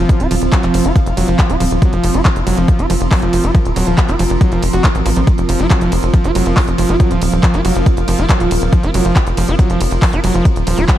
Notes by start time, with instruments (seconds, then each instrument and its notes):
Already playing: ambient pad F3 C4 F4 C5 F5
0.00 acid bass F3
0.09 kick, closed hi-hat
0.20 analog synth bass D#1, acid bass F4, closed hi-hat
0.31 analog synth bass D#1, acid bass F3, open hi-hat, ride
0.42 analog synth bass D#1, closed hi-hat
0.52 acid bass F#3, kick, clap, closed hi-hat
0.63 analog synth bass F1, acid bass F3, clap, closed hi-hat
0.74 analog synth bass F1, open hi-hat, ride
0.85 analog synth bass F1, acid bass F4, closed hi-hat
0.96 acid bass F3, kick, closed hi-hat
1.06 analog synth bass F1, closed hi-hat
1.17 analog synth bass F1, acid bass F#3, open hi-hat, ride
1.28 analog synth bass F1, acid bass F3, closed hi-hat
1.39 kick, clap, closed hi-hat
1.50 analog synth bass D#1, acid bass F4, closed hi-hat
1.56 ambient pad A#4
1.60 analog synth bass D#1, acid bass F3, open hi-hat, ride
1.71 analog synth bass D#1, closed hi-hat
1.82 acid bass F#3, kick, closed hi-hat
1.93 analog synth bass F1, acid bass F3, closed hi-hat
2.04 analog synth bass F1, open hi-hat, ride
2.14 analog synth bass F1, acid bass F4, ambient pad A#5, closed hi-hat
2.25 acid bass F3, kick, clap, closed hi-hat
2.36 analog synth bass F1, closed hi-hat
2.47 analog synth bass F1, acid bass F#3, open hi-hat, ride
2.57 analog synth bass F1, acid bass F3, closed hi-hat
2.68 kick, closed hi-hat
2.79 analog synth bass F1, acid bass F4, closed hi-hat
2.90 analog synth bass F1, acid bass F3, open hi-hat, ride
3.01 analog synth bass F1, closed hi-hat
3.11 acid bass F#3, kick, clap, open hi-hat
3.22 analog synth bass F1, acid bass F3, closed hi-hat
3.33 analog synth bass F1, open hi-hat, ride
3.44 analog synth bass F1, acid bass F4, closed hi-hat
3.55 acid bass F3, kick, closed hi-hat
3.65 analog synth bass D#1, closed hi-hat
3.76 analog synth bass D#1, acid bass F#3, open hi-hat, ride
3.87 analog synth bass D#1, acid bass F3, closed hi-hat
3.98 kick, clap, closed hi-hat
4.09 analog synth bass F1, acid bass F4, clap, closed hi-hat
4.19 analog synth bass F1, acid bass F3, open hi-hat, ride
4.30 analog synth bass F1, closed hi-hat
4.41 acid bass F#3, kick, closed hi-hat
4.52 analog synth bass F1, acid bass F3, closed hi-hat
4.63 analog synth bass F1, open hi-hat, ride
4.73 analog synth bass F1, acid bass F#4, closed hi-hat
4.84 acid bass D#3, kick, clap, closed hi-hat
4.95 analog synth bass A1, closed hi-hat
5.06 analog synth bass A1, acid bass F3, open hi-hat, ride
5.16 analog synth bass A1, acid bass F3, closed hi-hat
5.27 kick, closed hi-hat
5.38 analog synth bass F1, closed hi-hat
5.49 analog synth bass F1, acid bass F3, open hi-hat, ride
5.59 analog synth bass F1, acid bass F4, ambient pad F5, closed hi-hat
5.70 acid bass F#3, kick, clap, closed hi-hat
5.81 analog synth bass F1, acid bass F3, closed hi-hat
5.92 analog synth bass F1, open hi-hat, ride
6.03 analog synth bass F1, closed hi-hat
6.14 acid bass F3, kick, closed hi-hat
6.24 analog synth bass F1, acid bass F4, closed hi-hat
6.35 analog synth bass F1, acid bass F#3, open hi-hat, ride
6.46 analog synth bass F1, acid bass F3, closed hi-hat
6.57 kick, clap, open hi-hat
6.68 analog synth bass F1, closed hi-hat
6.78 analog synth bass F1, acid bass F3, open hi-hat, ride
6.89 analog synth bass F1, acid bass F4, closed hi-hat
7.00 acid bass F#3, kick, closed hi-hat
7.11 analog synth bass D#1, acid bass F3, closed hi-hat
7.22 analog synth bass D#1, open hi-hat, ride
7.32 analog synth bass D#1, closed hi-hat
7.43 acid bass F3, kick, clap, closed hi-hat
7.54 analog synth bass F1, acid bass F4, clap, closed hi-hat
7.65 analog synth bass F1, acid bass F#3, open hi-hat, ride
7.76 analog synth bass F1, acid bass F3, closed hi-hat
7.86 kick, closed hi-hat
7.97 analog synth bass F1, closed hi-hat
8.08 analog synth bass F1, acid bass F3, open hi-hat, ride
8.19 analog synth bass F1, acid bass F4, closed hi-hat
8.29 acid bass F#3, kick, clap, closed hi-hat
8.40 analog synth bass D#1, acid bass F3, closed hi-hat
8.51 analog synth bass D#1, open hi-hat, ride
8.62 analog synth bass D#1, closed hi-hat
8.73 acid bass F3, kick, closed hi-hat
8.83 analog synth bass F1, acid bass F4, closed hi-hat
8.94 analog synth bass F1, acid bass F#3, open hi-hat, ride
9.05 analog synth bass F1, acid bass F3, ambient pad A#5, closed hi-hat
9.16 kick, clap, closed hi-hat
9.27 analog synth bass F1, closed hi-hat
9.37 analog synth bass F1, acid bass F3, open hi-hat, ride
9.48 analog synth bass F1, acid bass F4, closed hi-hat
9.59 acid bass F#3, kick, closed hi-hat
9.70 analog synth bass F1, acid bass F3, closed hi-hat
9.81 analog synth bass F1, open hi-hat, ride
9.91 analog synth bass F1, closed hi-hat
10.02 acid bass F3, kick, clap, open hi-hat
10.13 analog synth bass F1, acid bass F4, closed hi-hat
10.24 analog synth bass F1, acid bass F#3, open hi-hat, ride
10.34 analog synth bass F1, acid bass F3, closed hi-hat
10.45 kick, closed hi-hat
10.56 analog synth bass D#1, closed hi-hat
10.67 analog synth bass D#1, acid bass F3, open hi-hat, ride
10.78 analog synth bass D#1, acid bass F4, closed hi-hat
10.88 acid bass F#3, kick, clap, closed hi-hat